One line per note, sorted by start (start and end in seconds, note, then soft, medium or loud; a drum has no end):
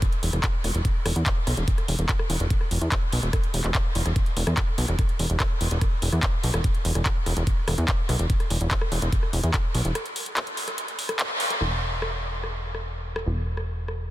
0.02 kick loud
0.02 closed hi-hat medium
0.12 closed hi-hat soft
0.23 0.30 E1 medium
0.23 open hi-hat loud
0.33 0.40 E1 medium
0.33 cross-stick soft
0.33 closed hi-hat medium
0.44 kick loud
0.44 clap loud
0.44 closed hi-hat medium
0.64 0.71 E1 medium
0.64 cross-stick soft
0.64 open hi-hat loud
0.75 0.82 E1 medium
0.75 closed hi-hat medium
0.85 kick loud
0.85 closed hi-hat medium
1.06 1.13 E1 medium
1.06 cross-stick medium
1.06 open hi-hat loud
1.16 1.23 E2 medium
1.16 closed hi-hat medium
1.26 kick loud
1.26 clap loud
1.26 closed hi-hat medium
1.47 1.54 B1 medium
1.47 cross-stick soft
1.47 open hi-hat loud
1.57 1.64 E1 medium
1.57 closed hi-hat medium
1.68 kick loud
1.68 closed hi-hat medium
1.78 cross-stick soft
1.78 closed hi-hat soft
1.88 1.96 E1 medium
1.88 open hi-hat loud
1.99 2.06 E1 medium
1.99 closed hi-hat medium
2.09 kick loud
2.09 clap loud
2.09 closed hi-hat medium
2.19 cross-stick medium
2.30 2.37 E1 loud
2.30 open hi-hat loud
2.40 2.47 E1 medium
2.40 closed hi-hat medium
2.50 kick loud
2.50 closed hi-hat medium
2.61 cross-stick soft
2.71 2.78 E1 loud
2.71 open hi-hat loud
2.81 2.89 E2 medium
2.81 closed hi-hat medium
2.92 kick loud
2.92 cross-stick soft
2.92 clap loud
2.92 closed hi-hat medium
3.13 3.20 B1 medium
3.13 open hi-hat loud
3.23 3.30 E1 medium
3.23 closed hi-hat medium
3.33 kick loud
3.33 cross-stick medium
3.33 closed hi-hat medium
3.44 closed hi-hat soft
3.54 3.61 E1 medium
3.54 open hi-hat loud
3.64 3.71 E1 medium
3.64 clap soft
3.64 closed hi-hat soft
3.75 kick loud
3.75 cross-stick soft
3.75 clap loud
3.75 closed hi-hat medium
3.95 4.02 E1 loud
3.95 open hi-hat loud
4.06 4.13 E1 medium
4.06 cross-stick soft
4.06 closed hi-hat soft
4.16 kick loud
4.16 closed hi-hat medium
4.26 closed hi-hat soft
4.37 4.44 E1 loud
4.37 open hi-hat loud
4.47 4.54 E2 medium
4.47 cross-stick medium
4.47 closed hi-hat medium
4.57 kick loud
4.57 clap loud
4.57 closed hi-hat medium
4.78 4.85 B1 medium
4.78 open hi-hat loud
4.88 4.96 E1 medium
4.88 cross-stick soft
4.88 closed hi-hat soft
4.99 kick loud
4.99 cross-stick soft
4.99 closed hi-hat medium
5.09 closed hi-hat soft
5.19 5.27 E1 medium
5.19 open hi-hat loud
5.30 5.37 E1 medium
5.30 closed hi-hat soft
5.40 kick loud
5.40 cross-stick medium
5.40 clap loud
5.40 closed hi-hat medium
5.61 5.68 E1 loud
5.61 open hi-hat loud
5.71 5.78 E1 medium
5.71 closed hi-hat medium
5.81 kick loud
5.81 cross-stick soft
5.81 closed hi-hat medium
6.02 6.09 E1 loud
6.02 open hi-hat loud
6.12 6.20 E2 medium
6.12 cross-stick soft
6.12 closed hi-hat soft
6.23 kick loud
6.23 clap loud
6.23 closed hi-hat medium
6.43 6.51 B1 medium
6.43 open hi-hat loud
6.54 6.61 E1 medium
6.54 cross-stick medium
6.54 closed hi-hat medium
6.64 kick loud
6.64 closed hi-hat medium
6.75 closed hi-hat soft
6.85 6.92 E1 medium
6.85 open hi-hat loud
6.95 7.02 E1 medium
6.95 cross-stick soft
6.95 closed hi-hat medium
7.06 kick loud
7.06 clap loud
7.06 closed hi-hat medium
7.26 7.33 E1 loud
7.26 cross-stick soft
7.26 open hi-hat medium
7.37 7.44 E1 medium
7.37 closed hi-hat medium
7.47 kick loud
7.47 closed hi-hat medium
7.68 7.75 E1 medium
7.68 cross-stick medium
7.68 open hi-hat loud
7.78 7.85 E2 medium
7.78 closed hi-hat medium
7.88 kick loud
7.88 clap loud
7.88 closed hi-hat medium
8.09 8.16 B1 medium
8.09 cross-stick soft
8.09 open hi-hat loud
8.19 8.27 E1 medium
8.19 closed hi-hat medium
8.30 kick loud
8.30 closed hi-hat medium
8.40 cross-stick soft
8.40 closed hi-hat soft
8.50 8.58 E1 medium
8.50 open hi-hat loud
8.61 8.68 E1 medium
8.61 closed hi-hat medium
8.71 kick loud
8.71 clap loud
8.71 closed hi-hat medium
8.81 cross-stick medium
8.92 8.99 E1 medium
8.92 open hi-hat medium
9.02 9.09 E1 medium
9.02 closed hi-hat medium
9.12 kick loud
9.12 closed hi-hat medium
9.23 cross-stick soft
9.33 9.40 E1 medium
9.33 open hi-hat loud
9.44 9.51 E2 medium
9.44 closed hi-hat medium
9.54 kick loud
9.54 cross-stick soft
9.54 clap loud
9.54 closed hi-hat medium
9.75 9.82 B1 medium
9.75 open hi-hat loud
9.85 9.92 E1 medium
9.85 closed hi-hat medium
9.95 cross-stick medium
9.95 closed hi-hat medium
10.06 closed hi-hat soft
10.16 open hi-hat loud
10.26 closed hi-hat medium
10.37 cross-stick soft
10.37 clap loud
10.37 closed hi-hat medium
10.47 closed hi-hat soft
10.57 open hi-hat loud
10.68 cross-stick soft
10.68 closed hi-hat medium
10.78 closed hi-hat medium
10.88 closed hi-hat soft
10.99 open hi-hat loud
11.09 cross-stick medium
11.09 closed hi-hat medium
11.19 clap loud
11.19 closed hi-hat medium
11.40 open hi-hat loud
11.50 cross-stick soft
11.50 closed hi-hat medium
11.61 13.24 E1 medium
11.61 cross-stick soft
12.02 cross-stick medium
12.44 cross-stick soft
12.75 cross-stick soft
13.16 cross-stick medium
13.26 14.11 E1 medium
13.57 cross-stick soft
13.88 cross-stick soft